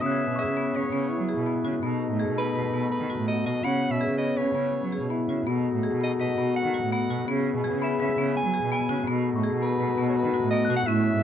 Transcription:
0.01 cello C#3, harmonium C#3 B3 E4, marimba B3, french horn C#4, soprano saxophone E5, glockenspiel D#6
0.06 glockenspiel F#6
0.11 glockenspiel G#6
0.28 cello B2
0.36 marimba G#4, soprano saxophone E5, glockenspiel C#6
0.47 cello C#3
0.57 marimba B3
0.75 cello C#3, marimba B4, soprano saxophone C#5
0.92 cello C#3, marimba B3
1.10 french horn E4
1.19 cello F#3
1.29 marimba G#4
1.37 cello B2
1.46 marimba B3
1.65 cello C#3, marimba F#4
1.83 harmonium B2 A3 D#4, cello B2, marimba B3, french horn D#4
2.10 cello A2
2.19 marimba G#4
2.28 cello B2
2.38 marimba B3, soprano saxophone B4
2.55 cello B2, marimba B4
2.73 cello B2, marimba B3
2.91 soprano saxophone B4
3.00 cello D#3
3.10 marimba F#4
3.19 cello A2
3.27 marimba B3, french horn F#4, soprano saxophone D#5
3.46 cello B2, marimba F#4, soprano saxophone D#5
3.64 harmonium C#3 B3 E4, cello C#3, marimba B3, french horn C#4, soprano saxophone F#5
3.91 cello B2, soprano saxophone E5
4.01 marimba G#4
4.09 cello C#3
4.18 marimba B3, soprano saxophone D#5
4.37 cello C#3, marimba B4, soprano saxophone C#5
4.54 cello C#3, marimba B3
4.83 cello F#3
4.92 marimba G#4
5.01 cello B2
5.10 marimba B3, french horn E4
5.28 cello C#3, marimba F#4
5.47 cello B2, harmonium B2 A3 D#4, marimba B3, french horn F#4
5.74 cello A2
5.83 marimba G#4
5.93 cello B2
6.01 marimba B3, soprano saxophone D#5
6.20 cello B2, marimba B4, soprano saxophone D#5
6.38 cello B2, marimba B3
6.56 soprano saxophone F#5
6.64 cello D#3
6.74 marimba F#4
6.82 cello A2
6.92 marimba B3, soprano saxophone F#5
7.10 cello B2, marimba F#4
7.27 harmonium C#3 B3 E4, cello C#3, marimba B3, french horn G#4
7.56 cello B2
7.64 marimba G#4
7.74 cello C#3
7.82 marimba B3, soprano saxophone E5, glockenspiel B5
8.00 cello C#3, marimba B4, soprano saxophone E5
8.18 cello C#3, marimba B3
8.37 soprano saxophone G#5
8.45 cello F#3
8.54 marimba G#4
8.63 cello B2
8.72 marimba B3, soprano saxophone G#5
8.89 cello C#3, marimba F#4
9.07 cello B2, harmonium B2 A3 D#4, marimba B3, french horn F#4
9.35 cello A2, glockenspiel C#6
9.43 marimba G#4
9.52 cello B2
9.62 marimba B3, soprano saxophone B4
9.79 cello B2, marimba B4
9.98 cello B2, marimba B3
10.09 soprano saxophone C#5
10.16 soprano saxophone B4
10.25 cello D#3
10.34 marimba F#4
10.43 cello A2
10.50 marimba B3, soprano saxophone D#5
10.65 glockenspiel F#6
10.69 cello B2, marimba F#4
10.76 soprano saxophone F#5
10.86 cello A2, harmonium A2 G#3 C#4, marimba C#4, french horn E4, soprano saxophone E5
11.15 cello G#2

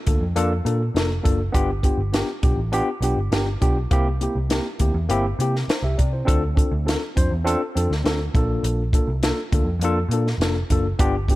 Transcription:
0.07 picked electric bass D2, tine electric piano A#3 D4 F4 A4, kick, closed hi-hat
0.21 picked electric bass F2
0.36 picked electric bass F2, tine electric piano A#3 D4 F4 A4, closed hi-hat
0.65 picked electric bass A#2, tine electric piano A#3 D4 F4 A4, closed hi-hat
0.94 picked electric bass F1, tine electric piano A#3 D4 F4 A4, snare, closed hi-hat
1.23 picked electric bass F#1, tine electric piano A#3 D4 F4 A4, kick, closed hi-hat
1.52 picked electric bass G1, tine electric piano B3 D4 F4 G4, kick, closed hi-hat
1.83 tine electric piano B3 D4 F4 G4, kick, closed hi-hat
1.97 picked electric bass G1
2.13 tine electric piano B3 D4 F4 G4, snare, closed hi-hat
2.43 picked electric bass B1, tine electric piano B3 D4 F4 G4, kick, closed hi-hat
2.56 picked electric bass A1
2.72 tine electric piano B3 D4 F4 G4, closed hi-hat
3.01 picked electric bass B1, tine electric piano B3 D4 F4 G4, closed hi-hat
3.17 picked electric bass G1
3.32 picked electric bass G1, tine electric piano B3 D4 F4 G4, snare, closed hi-hat
3.61 picked electric bass B1, tine electric piano B3 D4 F4 G4, kick, closed hi-hat
3.91 picked electric bass C2, tine electric piano A#3 C4 E4 G4, kick, closed hi-hat
4.21 tine electric piano A#3 C4 E4 G4, closed hi-hat
4.35 picked electric bass C2
4.49 tine electric piano A#3 C4 E4 G4, snare, closed hi-hat
4.79 picked electric bass D2, tine electric piano A#3 C4 E4 G4, kick, closed hi-hat
4.94 picked electric bass E2
5.09 picked electric bass G1, tine electric piano A#3 C4 E4 G4, closed hi-hat
5.39 picked electric bass C3, tine electric piano A#3 C4 E4 G4, closed hi-hat
5.56 snare
5.68 tine electric piano E4 C5, muted picked electric bass stroke, snare, closed hi-hat
5.82 picked electric bass C2, tine electric piano G4 E5
5.98 picked electric bass C3, tine electric piano D5, kick, closed hi-hat
6.13 tine electric piano E4 C5
6.25 picked electric bass D2, tine electric piano C4 D4 F4 A4, kick, closed hi-hat
6.55 tine electric piano C4 D4 F4 A4, kick, closed hi-hat
6.71 picked electric bass D2
6.85 tine electric piano C4 D4 F4 A4, snare, closed hi-hat
7.16 picked electric bass F2, tine electric piano C4 D4 F4 C5, kick, closed hi-hat
7.31 picked electric bass E2
7.44 tine electric piano C4 D4 F4 A4, closed hi-hat
7.75 picked electric bass F2, tine electric piano C4 D4 F4 A4, closed hi-hat
7.90 picked electric bass D2, snare
8.04 picked electric bass D2, tine electric piano C4 D4 F4 A4, snare, closed hi-hat
8.34 picked electric bass A#1, tine electric piano A#3 D4 F4 A4, kick, closed hi-hat
8.63 picked electric bass A#1, closed hi-hat
8.93 tine electric piano A#3 D4 F4 A4, kick, closed hi-hat
9.07 picked electric bass C2
9.23 tine electric piano A#3 D4 F4 A4, snare, closed hi-hat
9.52 picked electric bass D2, tine electric piano A#3 D4 F4 A4, kick, closed hi-hat
9.64 picked electric bass F2
9.80 picked electric bass F2, tine electric piano A#3, closed hi-hat
9.84 tine electric piano D4 F4 A4
10.09 picked electric bass A#2, tine electric piano A#3, closed hi-hat
10.13 tine electric piano D4 F4 A4
10.27 snare
10.38 picked electric bass F1, tine electric piano A#3 D4 F4 A4, closed hi-hat
10.42 snare
10.70 picked electric bass F#1, tine electric piano A#3 D4 F4 A4, kick, closed hi-hat
10.99 picked electric bass G1, tine electric piano B3 D4 F4 G4, kick, closed hi-hat
11.28 tine electric piano B3 D4 F4 G4, kick, closed hi-hat

